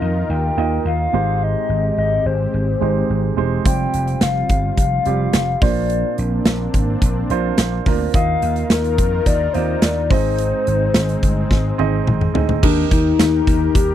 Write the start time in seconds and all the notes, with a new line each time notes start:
Already playing: D#3 A#3 D#4 F4 A#4 D#5
0.01 F2
0.29 D#2 G5
0.57 D#2 A#3 D#4 F4 D#5
0.85 D#2 F5
1.13 G#1 G#2 G#3 C4 D#4 G4 C5
1.43 D#5
1.69 G#1
1.98 G#1 D#5
2.25 G#1 C5
2.54 G#1
2.81 G#1 G#3 D#4 G4 C5
3.10 G#1
3.37 E1 G#3 D#4 G4 C5
3.65 F1 G3 C4 F4 C5 G5, kick, closed hi-hat
3.94 F1, closed hi-hat
4.07 closed hi-hat
4.21 F1 F5, snare, closed hi-hat
4.49 G1, kick, closed hi-hat
4.77 F1 F5, kick, closed hi-hat
5.05 F1 G3 C4 F4 G4, closed hi-hat
5.33 F1, snare, closed hi-hat
5.61 A#1 A#2 A#3 C4 D4 F4 C5 D5, kick, open hi-hat
5.90 closed hi-hat
6.18 A#1, closed hi-hat
6.46 A#1, snare, closed hi-hat
6.74 G#1, kick, closed hi-hat
7.02 A#1, kick, closed hi-hat
7.30 A#1 A#3 D4 F4 C5, closed hi-hat
7.58 A#1, snare, closed hi-hat
7.86 D2 A#3 D4 F4 A#4, kick, open hi-hat
8.13 D#2 D#3 A#3 D#4 F4 A#4 D#5 F5, kick, closed hi-hat
8.42 D#2, closed hi-hat
8.56 closed hi-hat
8.70 D#2 A#4, snare, closed hi-hat
8.84 closed hi-hat
8.98 F2, kick, closed hi-hat
9.26 D#2 D5, kick, closed hi-hat
9.53 D#2 A#3 D#4 F4 C5 D5, closed hi-hat
9.81 D#2 D5, snare, closed hi-hat
10.10 G#1 G#2 G#3 C4 D#4 G#4 C5 D#5, kick, open hi-hat
10.38 closed hi-hat
10.67 G#1, closed hi-hat
10.94 G#1, snare, closed hi-hat
11.09 closed hi-hat
11.23 G1, kick, closed hi-hat
11.51 G#1, kick, snare
11.78 G#1 C4 D#4 G#4 D#5, high tom
12.07 G#1, mid tom
12.21 mid tom
12.34 D2 C4 D#4 G#4 D#5, floor tom
12.49 floor tom
12.62 D#2 D#3 D4 D#4 G4 A#4, kick, crash
12.91 D#2 D#4, kick, closed hi-hat
13.19 D#2, snare, closed hi-hat, tambourine
13.47 D#2, kick, closed hi-hat
13.75 D#2 G4, kick, closed hi-hat